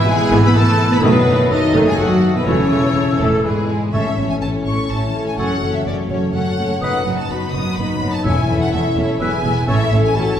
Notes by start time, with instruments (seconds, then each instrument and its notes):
Already playing: harp B2 B3 E5
0.06 double bass section G#1, viola section E3, trombone section E3 B3, cello section G#3, harp E4, clarinet E4, french horn section G#4, violin section G#4 G#5, oboe B4, flute E6
0.31 double bass section G#1, viola section E3 B3, harp B4
0.43 cello section B3, violin section B4 B5, french horn section B4
0.54 double bass section G#1, viola section E3 G#3, cello section A3, violin section A4 A5, french horn section A4, harp E5
0.79 harp B4
0.91 cello section B3, violin section B4 B5, french horn section B4
1.02 double bass section F#1, harp F#2, cello section B2, viola section D#3 A3, trombone section D#3 A3, violin section B3 B4, french horn section B3, clarinet F#4, oboe A4, flute D#6
1.27 double bass section F#1, viola section D#3 F#3, harp F#3
1.50 double bass section F#1, cello section D#3, trombone section D#3 A3, viola section D#3, violin section D#4 D#5, harp D#4, french horn section D#4, clarinet F#4, oboe A4, flute D#6
1.74 double bass section F#1, viola section D#3 A3, harp A4
1.87 cello section G#3, french horn section G#4, violin section G#4 G#5
1.98 double bass section F#1, viola section D#3 F#3, trombone section D#3 A3, cello section F#3, french horn section F#4, violin section F#4 F#5, clarinet F#4, oboe A4, harp D#5, flute D#6
2.24 harp B4
2.35 cello section B2, french horn section B3, violin section B3 B4
2.45 double bass section E1, harp E2, cello section C#3, viola section E3 A3, trombone section E3 A3, french horn section C#4, violin section C#4 C#5, clarinet E4, oboe A4, flute E6
2.71 double bass section E1, viola section C#3 E3, harp E3
2.96 double bass section E1, viola section C#3, harp E4
3.19 double bass section E1, cello section A2, viola section E3 A3, french horn section A3, violin section A3 A4, harp A4
3.42 double bass section E1, harp E2, cello section G#2, trombone section E3 B3, viola section E3 G#3, french horn section G#3, violin section G#3 G#4, clarinet E4, oboe B4, flute E6
3.70 harp E4 E5
3.93 double bass section A1, cello section A2, harp A2, timpani A2, viola section A3 C#4, french horn section C#4, violin section A4 C#5 E5, clarinet A4, oboe C#5
4.10 harp E4
4.17 double bass section A1, cello section A2, viola section A3 C#4, violin section A4 C#5
4.27 harp E3, violin section G#5
4.41 double bass section A1, cello section A2, viola section A3 C#4, harp E4, violin section A4 C#5 A5
4.58 harp C#4
4.65 double bass section A1, cello section A2, viola section A3 C#4, violin section A4 C#5 C#6
4.74 harp C#5
4.89 double bass section A1, cello section A2, viola section A3 C#4, harp C#4, french horn section E4, violin section A4 C#5 A5
5.07 harp E3
5.14 double bass section A1, cello section A2, viola section A3 C#4, violin section A4 C#5
5.26 violin section G#5
5.38 double bass section F#1, cello section F#2, harp F#2, viola section A3 C#4, french horn section F#4, clarinet A4, violin section A4 C#5 F#5, oboe C#5
5.55 harp A4
5.62 double bass section F#1, cello section F#2, viola section A3 C#4, violin section A4 C#5
5.70 harp C#3, violin section E5
5.86 double bass section F#1, cello section F#2, viola section A3 C#4, harp A4, violin section A4 C#5 D5
6.02 harp C#4
6.10 double bass section F#1, cello section F#2, viola section A3 C#4, violin section A4 C#5
6.19 harp C#5
6.34 double bass section F#1, cello section F#2, viola section A3 C#4, harp C#4, violin section A4 C#5 F#5, french horn section A4
6.51 harp C#3
6.58 double bass section F#1, cello section F#2, viola section A3 C#4, violin section A4 C#5
6.67 harp C#4
6.81 double bass section F#1, cello section F#2, harp F#2, viola section B3 D#4, violin section F#4 B4 F#5, french horn section B4, clarinet B4, oboe D#5
6.99 harp F#4
7.05 double bass section F#1, cello section F#2, viola section B3 D#4, violin section F#4 B4
7.15 harp F#3, violin section A5
7.29 double bass section F#1, cello section F#2, viola section B3 D#4, violin section F#4 B4 B5, french horn section F#4, harp F#4
7.46 harp B3
7.53 double bass section F#1, cello section F#2, viola section B3 D#4, violin section F#4 B4 D#6
7.62 harp D#5
7.76 double bass section F#1, cello section F#2, harp B3, viola section B3 D#4, french horn section D#4, violin section F#4 B4 B5
7.93 harp F#3
8.00 double bass section F#1, cello section F#2, viola section B3 D#4, violin section F#4 B4
8.13 violin section A5
8.22 double bass section E1, cello section E2, harp E2, timpani E2, viola section C#4 E4, violin section A4 E5 G#5, clarinet C#5, oboe E5
8.26 french horn section E4
8.42 harp A4
8.47 double bass section E1, cello section E2, viola section C#4 E4, violin section A4 E5
8.57 harp E3, violin section F#5
8.70 double bass section E1, cello section E2, viola section C#4 E4, violin section A4 E5, harp A4
8.89 harp C#4
8.95 double bass section E1, cello section E2, viola section C#4 E4, violin section A4 C#5 E5
9.05 harp E5
9.19 double bass section E1, cello section E2, harp E2, viola section B3 E4, french horn section G#4, violin section B4 E5 G#5, clarinet B4, oboe E5
9.37 harp B3
9.43 double bass section E1, cello section E2, viola section B3 E4, violin section B4 E5
9.53 harp B4 E5
9.67 double bass section A1, harp A2, cello section A2, viola section C#4 E4, violin section A4 C#5 E5, clarinet A4, french horn section A4, oboe C#5
9.84 harp A4
9.91 double bass section A1, cello section A2, viola section C#4 E4, violin section A4 C#5
9.99 harp E3
10.04 violin section G#5
10.14 double bass section A1, cello section A2, viola section C#4 E4, french horn section F#4, violin section A4 C#5 A5
10.32 harp C#4